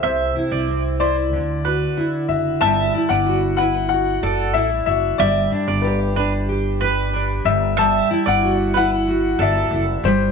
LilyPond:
<<
  \new Staff \with { instrumentName = "Upright piano" } { \time 4/4 \key d \mixolydian \tempo 4 = 93 c''4 r8 d''2 e''8 | a''8. fis''8. fis''8 fis''4 e''8 e''8 | d''4 b'2 r8 e''8 | a''8. fis''8. fis''4 e''4 c''8 | }
  \new Staff \with { instrumentName = "Mandolin" } { \time 4/4 \key d \mixolydian e''8 r16 d''8 r16 c''16 r8. b'8. r8. | e''8 r16 d''8 r16 b'16 r8. a'8. r8. | e''8 r16 d''8 r16 b'16 r8. b'8. r8. | e''8 r16 d''8 r16 b'16 r8. a'8. r8. | }
  \new Staff \with { instrumentName = "Steel-string acoustic guitar" } { \time 4/4 \key d \mixolydian c8 e'8 c'8 e'8 d8 fis'8 e'8 fis'8 | g8 e'8 fis'8 e'8 fis'8 d''8 e'8 fis'8 | g8 d'8 g'8 d'8 g'8 b'8 d'8 g8 | g8 e'8 fis'8 e'8 fis'8 d''8 e'8 g8 | }
  \new Staff \with { instrumentName = "Upright bass" } { \clef bass \time 4/4 \key d \mixolydian c,8 r16 c,4~ c,16 d,4 r8 fis,,8 | g,,8 r16 g,,4.~ g,,16 fis,,8 a,,8 fis,,8 | g,,8 r16 g,,2~ g,,8. g,,8~ | g,,8 r16 g,,4.~ g,,16 g,,8 fis,,8 g,,8 | }
>>